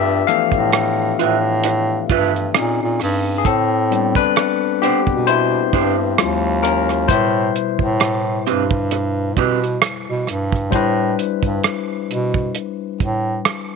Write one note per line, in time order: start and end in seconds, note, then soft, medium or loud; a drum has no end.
0.00 0.24 G2 medium
0.00 2.56 D4 medium
0.00 2.56 F4 medium
0.00 0.25 G4 medium
0.00 2.56 B4 medium
0.00 2.56 D5 medium
0.00 0.28 E5 medium
0.27 2.51 E3 medium
0.27 2.51 F3 soft
0.27 2.51 A3 soft
0.27 2.51 B3 soft
0.27 2.97 A4 medium
0.27 2.96 F5 medium
0.27 closed hi-hat medium
0.52 1.14 A2 medium
0.52 kick medium
0.52 closed hi-hat soft
0.73 cross-stick loud
0.73 closed hi-hat medium
1.19 2.06 A2 medium
1.19 1.35 F4 medium
1.19 1.36 B4 medium
1.19 1.36 E5 medium
1.19 closed hi-hat medium
1.64 muted clean electric guitar stroke soft
1.64 closed hi-hat medium
2.10 2.52 G2 medium
2.10 2.31 F4 medium
2.10 2.31 B4 medium
2.10 2.32 E5 medium
2.10 kick medium
2.10 closed hi-hat medium
2.36 closed hi-hat soft
2.54 2.79 A#2 medium
2.54 3.17 C4 soft
2.54 3.18 C#4 soft
2.54 3.18 D#4 medium
2.54 3.17 G#4 medium
2.54 cross-stick loud
2.54 closed hi-hat medium
2.82 3.00 A#2 medium
3.00 3.43 G2 medium
3.00 cross-stick soft
3.00 open hi-hat soft
3.38 3.45 G#4 medium
3.45 4.13 A2 medium
3.45 3.90 C4 medium
3.45 4.12 A4 medium
3.45 kick loud
3.45 closed hi-hat medium
3.91 4.53 G3 soft
3.91 4.54 B3 medium
3.91 4.54 C4 medium
3.91 4.16 D4 medium
3.91 closed hi-hat medium
4.15 4.24 B2 soft
4.15 4.78 D4 medium
4.15 4.84 B4 loud
4.15 kick medium
4.15 closed hi-hat soft
4.36 cross-stick loud
4.36 closed hi-hat medium
4.82 4.94 B2 soft
4.82 5.25 B3 medium
4.82 4.99 D4 medium
4.82 5.24 G4 medium
4.82 4.99 G4 medium
4.82 5.00 C5 medium
4.82 closed hi-hat medium
5.07 5.69 B2 medium
5.07 kick medium
5.27 6.60 E4 medium
5.27 6.67 C5 loud
5.27 muted clean electric guitar stroke soft
5.27 closed hi-hat medium
5.73 6.15 G2 medium
5.73 5.94 D4 medium
5.73 5.95 G4 medium
5.73 5.95 C5 medium
5.73 kick medium
5.73 closed hi-hat medium
6.18 7.06 D#2 loud
6.18 7.05 F#3 soft
6.18 7.05 G#3 soft
6.18 6.64 C#4 soft
6.18 7.06 F4 medium
6.18 cross-stick loud
6.18 closed hi-hat medium
6.63 6.85 C#4 medium
6.63 6.83 A#4 medium
6.63 cross-stick soft
6.63 closed hi-hat medium
6.89 cross-stick soft
7.08 7.51 A2 medium
7.08 10.69 B2 medium
7.08 10.69 G3 soft
7.08 9.78 E4 medium
7.08 10.69 B4 medium
7.08 9.77 C5 medium
7.08 kick loud
7.08 closed hi-hat medium
7.56 closed hi-hat medium
7.79 8.41 A2 medium
7.79 kick medium
8.00 cross-stick medium
8.00 closed hi-hat medium
8.47 9.39 G2 medium
8.47 8.63 C4 medium
8.47 8.63 G4 medium
8.47 8.63 B4 medium
8.47 closed hi-hat medium
8.71 kick medium
8.91 muted clean electric guitar stroke soft
8.91 closed hi-hat medium
9.37 9.79 B2 medium
9.37 9.58 C4 medium
9.37 9.59 G4 medium
9.37 9.59 B4 medium
9.37 kick medium
9.37 closed hi-hat medium
9.64 closed hi-hat soft
9.82 cross-stick loud
9.82 closed hi-hat medium
10.09 10.27 B2 medium
10.27 10.70 G2 medium
10.27 cross-stick soft
10.27 closed hi-hat medium
10.52 kick medium
10.52 closed hi-hat soft
10.70 11.15 A2 medium
10.70 13.76 G3 medium
10.70 13.76 D4 medium
10.70 13.76 E4 medium
10.70 13.76 C5 medium
10.70 kick loud
10.70 closed hi-hat medium
10.76 13.76 B4 medium
11.19 closed hi-hat medium
11.43 11.62 G2 medium
11.43 kick medium
11.43 closed hi-hat soft
11.64 cross-stick medium
11.64 closed hi-hat medium
12.11 12.52 B2 medium
12.11 closed hi-hat medium
12.34 kick medium
12.55 closed hi-hat medium
13.00 13.42 A2 medium
13.00 kick medium
13.00 closed hi-hat medium
13.45 cross-stick loud
13.45 closed hi-hat medium